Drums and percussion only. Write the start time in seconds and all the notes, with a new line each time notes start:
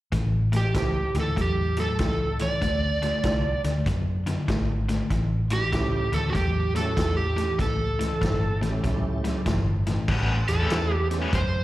0.12 kick, snare, closed hi-hat
0.53 snare, closed hi-hat
0.74 kick, snare, closed hi-hat
1.15 snare, closed hi-hat
1.37 kick, snare, closed hi-hat
1.77 snare, closed hi-hat
1.99 kick, snare, closed hi-hat
2.39 snare, closed hi-hat
2.62 kick, snare, closed hi-hat
3.02 snare, closed hi-hat
3.23 kick, snare, closed hi-hat
3.64 snare, closed hi-hat
3.86 kick, snare, closed hi-hat
4.26 snare, closed hi-hat
4.48 kick, snare, closed hi-hat
4.89 snare, closed hi-hat
5.10 kick, snare, closed hi-hat
5.50 snare, closed hi-hat
5.73 kick, snare, closed hi-hat
6.13 snare, closed hi-hat
6.35 kick, snare, closed hi-hat
6.76 snare, closed hi-hat
6.97 kick, snare, closed hi-hat
7.38 snare, closed hi-hat
7.59 kick, snare, closed hi-hat
8.01 snare, closed hi-hat
8.22 kick, snare, closed hi-hat
8.63 snare, closed hi-hat
8.84 kick, snare, closed hi-hat
9.25 snare, closed hi-hat
9.46 kick, snare, closed hi-hat
9.87 snare, closed hi-hat
10.08 kick, snare, crash
10.48 snare, closed hi-hat
10.70 snare, closed hi-hat
11.11 snare, closed hi-hat
11.33 kick, snare, closed hi-hat